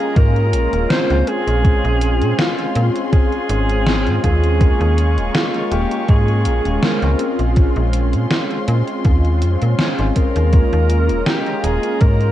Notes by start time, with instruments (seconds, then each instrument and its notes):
Already playing: analog polysynth G#3 A#3 C#4 F4, string section G#3 D#5 A#5, alto saxophone G#4
0.16 fm bass G#2, alto saxophone A#4, kick, closed hi-hat
0.36 closed hi-hat
0.53 fm bass A#1, closed hi-hat
0.73 fm bass D#1, closed hi-hat
0.89 analog polysynth G#3 C4 C#4 F4, alto saxophone C5, snare, closed hi-hat
1.10 fm bass C#2, closed hi-hat
1.27 alto saxophone G#4, string section C6, closed hi-hat
1.47 fm bass A#1, closed hi-hat
1.63 analog polysynth G#3 C4 C#4 F4, kick, closed hi-hat
1.84 fm bass A#1, closed hi-hat
2.01 closed hi-hat
2.21 fm bass A#2, closed hi-hat
2.39 alto saxophone F4, snare, closed hi-hat
2.59 closed hi-hat
2.76 fm bass A#2, closed hi-hat
2.96 closed hi-hat
3.12 alto saxophone G#4, kick, closed hi-hat
3.32 closed hi-hat
3.50 fm bass G#1, closed hi-hat
3.70 closed hi-hat
3.86 analog polysynth G#3 C4 C#4 F4, snare, closed hi-hat
4.07 fm bass G#2, closed hi-hat
4.24 fm bass D#2, alto saxophone G#4, kick, closed hi-hat
4.44 closed hi-hat
4.59 analog polysynth G#3 A#3 C#4 F4, string section D#5 C#6, kick, closed hi-hat
4.81 fm bass D#2, closed hi-hat
4.98 closed hi-hat
5.17 fm bass D#1, closed hi-hat
5.35 alto saxophone F4, snare, closed hi-hat
5.54 closed hi-hat
5.72 fm bass D#1, alto saxophone G4, closed hi-hat
5.91 closed hi-hat
6.08 fm bass G#2, alto saxophone G#4, kick, closed hi-hat
6.28 closed hi-hat
6.45 fm bass A#1, closed hi-hat
6.65 fm bass D#1, closed hi-hat
6.82 analog polysynth G#3 C4 C#4 F4, alto saxophone A#4, snare, closed hi-hat
7.02 fm bass C#2, closed hi-hat
7.19 string section C6, closed hi-hat
7.39 fm bass A#1, closed hi-hat
7.54 analog polysynth G#3 C4 C#4 F4, kick, closed hi-hat
7.76 fm bass A#1, closed hi-hat
7.93 closed hi-hat
8.13 fm bass A#2, closed hi-hat
8.31 snare, closed hi-hat
8.51 closed hi-hat
8.68 fm bass A#2, closed hi-hat
8.87 closed hi-hat
9.04 fm bass D#2, kick, closed hi-hat
9.25 closed hi-hat
9.42 fm bass F2, closed hi-hat
9.61 fm bass A#2, closed hi-hat
9.78 analog polysynth G#3 C4 C#4 F4, snare, closed hi-hat
9.98 fm bass G#1, closed hi-hat
10.16 alto saxophone A#4, kick, closed hi-hat
10.36 fm bass D#2, closed hi-hat
10.51 analog polysynth G#3 A#3 C#4 F4, string section D#5 A#5, kick, closed hi-hat
10.73 fm bass D#2, closed hi-hat
10.90 closed hi-hat
11.09 fm bass D#1, closed hi-hat
11.26 alto saxophone G4, snare, closed hi-hat
11.46 closed hi-hat
11.64 fm bass D#1, alto saxophone G#4, closed hi-hat
11.83 closed hi-hat
12.01 fm bass G#2, alto saxophone A#4, kick, closed hi-hat
12.21 closed hi-hat